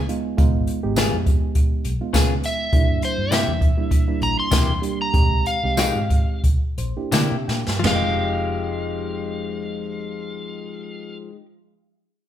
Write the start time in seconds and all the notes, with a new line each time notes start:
0.09 G#3 B3 D#4 F4, closed hi-hat
0.37 C#2 G#3 B3 D#4 F4, kick, closed hi-hat
0.55 G#1
0.67 closed hi-hat
0.83 G#1 G#3 B3 D#4 G4
0.96 C#3 B3 F4 G#4, snare, closed hi-hat, tambourine
1.13 F2
1.26 kick, closed hi-hat
1.55 kick, closed hi-hat
1.72 muted fingered electric bass stroke
1.84 B1, closed hi-hat
2.01 G#3 B3 D#4 F4
2.13 C#3 B3 F4 G#4, kick, snare, closed hi-hat, tambourine
2.43 E5, closed hi-hat
2.73 C2 G3 A#3 D4 E4, kick, closed hi-hat
2.89 G2
3.02 C5, closed hi-hat
3.18 G2
3.31 C3 A#3 E4 G4 E5, snare, closed hi-hat, tambourine
3.47 E2
3.61 kick, closed hi-hat
3.77 G3 A#3 D4 E4
3.91 kick, closed hi-hat
4.07 G3 A#3 D4 E4, muted fingered electric bass stroke
4.21 A#1 A#5, closed hi-hat
4.40 C6
4.51 E2 C3 A#3 E4 G4, kick, snare, closed hi-hat, tambourine
4.82 G3 A#3 D4 G4, closed hi-hat
5.02 A#5
5.13 F2 G#3 C4 D#4 G4, kick, closed hi-hat
5.31 C2
5.46 F5, closed hi-hat
5.63 C2 G#3 C4 D#4 G4
5.77 F3 G#3 D#4 G4, snare, closed hi-hat, tambourine
5.96 G#2
6.10 kick, closed hi-hat
6.44 C2, kick, closed hi-hat
6.62 muted fingered electric bass stroke
6.78 A#1 C5, closed hi-hat
6.97 A#3 D4 E4 G4
7.12 C3 D3 A#3 E4 G4 D5, snare, closed hi-hat, tambourine
7.32 C3 E5
7.48 A#2 G5, snare
7.68 G2, snare
7.79 F3 G#3
7.84 F1 G#3 C4 D#4 G4 F5, snare, floor tom, ride bell
7.91 D#4
7.95 G4